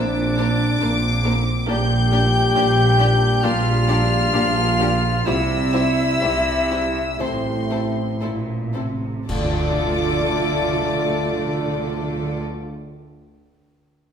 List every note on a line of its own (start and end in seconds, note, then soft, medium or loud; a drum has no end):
0.00 0.71 A#1 loud
0.00 0.71 A#2 loud
0.00 1.65 A#3 medium
0.00 1.65 C4 medium
0.00 1.40 D4 loud
0.00 1.40 D5 medium
0.00 1.69 D6 loud
0.38 0.46 A#3 medium
0.38 0.46 D4 medium
0.38 0.47 A#4 medium
0.38 0.46 C5 medium
0.81 1.59 A#1 loud
0.81 1.58 A#2 medium
0.81 0.89 A#3 medium
0.81 0.89 D4 medium
0.81 0.89 A#4 medium
0.81 0.89 C5 medium
1.25 1.33 A#3 medium
1.25 1.33 D4 medium
1.25 1.34 A#4 medium
1.25 1.34 C5 medium
1.67 2.46 A#1 loud
1.67 2.46 A#2 medium
1.67 5.08 G3 medium
1.67 1.75 A#3 loud
1.67 5.08 D4 medium
1.67 1.76 D4 loud
1.67 3.45 G4 loud
1.67 1.78 G4 medium
1.67 1.78 D5 medium
1.67 3.46 G5 loud
1.67 3.41 G6 loud
2.12 2.20 A#3 medium
2.12 2.20 D4 medium
2.12 2.21 G4 medium
2.12 2.21 D5 medium
2.55 3.34 A#1 loud
2.55 3.34 A#2 loud
2.55 2.63 A#3 medium
2.55 2.63 D4 medium
2.55 2.65 G4 medium
2.55 2.64 D5 medium
2.98 3.06 A#3 medium
2.98 3.06 D4 medium
2.98 3.08 G4 medium
2.98 3.08 D5 medium
3.43 4.24 A#1 loud
3.43 4.24 A#2 loud
3.43 3.52 A#3 medium
3.43 3.51 D4 medium
3.43 5.27 F4 loud
3.43 3.52 G4 medium
3.43 3.51 D5 medium
3.43 5.26 F5 loud
3.43 5.27 F6 loud
3.88 3.96 A#3 medium
3.88 3.97 D4 medium
3.88 3.97 G4 medium
3.88 3.97 D5 loud
4.33 5.16 A#1 loud
4.33 5.16 A#2 loud
4.33 4.41 A#3 medium
4.33 4.41 D4 medium
4.33 4.42 G4 medium
4.33 4.42 D5 medium
4.80 4.88 A#3 medium
4.80 4.88 D4 medium
4.80 4.88 G4 medium
4.80 4.88 D5 medium
5.25 6.11 C2 medium
5.25 6.11 C3 loud
5.25 7.17 G3 loud
5.25 5.34 G3 medium
5.25 7.16 E4 loud
5.25 7.19 E4 loud
5.25 5.34 E4 loud
5.25 5.34 G4 medium
5.25 5.35 C5 medium
5.25 7.22 E5 loud
5.25 7.18 E6 loud
5.73 5.81 G3 medium
5.73 5.81 E4 medium
5.73 5.81 G4 medium
5.73 5.81 C5 medium
6.22 7.09 C2 loud
6.22 7.09 C3 loud
6.22 6.31 G3 medium
6.22 6.31 E4 medium
6.22 6.30 G4 medium
6.22 6.30 C5 medium
6.71 6.79 G3 medium
6.71 6.79 E4 medium
6.71 6.79 G4 medium
6.71 6.79 C5 medium
7.20 8.12 A1 medium
7.20 8.72 A2 loud
7.20 8.11 A2 medium
7.20 8.90 A3 medium
7.20 7.28 C4 medium
7.20 8.21 C4 medium
7.20 7.28 E4 medium
7.20 8.87 E4 medium
7.20 7.28 A4 medium
7.20 7.28 C5 medium
7.20 8.23 C5 medium
7.20 8.22 C6 medium
7.71 7.79 C4 medium
7.71 7.79 E4 medium
7.71 7.79 A4 medium
7.71 7.79 C5 medium
8.21 9.17 A1 medium
8.21 8.73 A#2 medium
8.21 8.32 C4 medium
8.21 8.31 E4 medium
8.21 8.30 A4 medium
8.21 8.29 C5 medium
8.74 9.29 C3 medium
8.74 8.84 C4 medium
8.74 8.84 E4 medium
8.74 8.82 A4 medium
8.74 8.82 C5 medium
9.27 12.39 D2 medium
9.27 12.39 D3 medium
9.27 9.36 D3 medium
9.27 12.39 A3 medium
9.27 12.40 A3 medium
9.27 12.38 F4 medium
9.27 12.40 F4 medium
9.27 12.38 A4 medium
9.27 12.37 D5 medium
9.27 12.38 D5 medium
9.27 12.39 D5 loud
9.27 12.40 D6 loud
9.27 concert bass drum medium
9.27 crash medium
9.36 9.43 D3 medium
9.43 9.50 D3 medium
9.50 9.57 D3 medium
9.57 9.64 D3 medium
9.64 9.71 D3 medium
9.71 9.78 D3 medium
9.78 9.85 D3 medium
9.85 9.92 D3 medium
9.92 9.99 D3 medium
9.99 10.06 D3 medium
10.06 10.13 D3 medium
10.13 10.20 D3 medium
10.20 10.27 D3 medium
10.27 10.34 D3 medium
10.34 10.41 D3 medium
10.41 10.47 D3 medium
10.47 10.54 D3 medium
10.55 10.62 D3 medium
10.62 10.68 D3 medium
10.68 10.75 D3 medium
10.75 10.82 D3 medium
10.82 10.89 D3 medium
10.89 10.96 D3 medium
10.96 11.03 D3 loud
11.03 11.10 D3 medium
11.10 11.17 D3 medium
11.17 11.24 D3 medium
11.25 11.32 D3 medium
11.32 11.39 D3 medium
11.39 11.46 D3 medium
11.47 11.54 D3 medium
11.54 11.60 D3 medium
11.60 11.67 D3 medium
11.67 11.74 D3 medium
11.74 11.81 D3 medium
11.82 11.89 D3 medium
11.89 11.95 D3 medium
11.95 12.02 D3 medium
12.03 12.10 D3 medium
12.10 12.16 D3 medium
12.16 12.23 D3 medium
12.23 12.30 D3 medium
12.30 12.37 D3 medium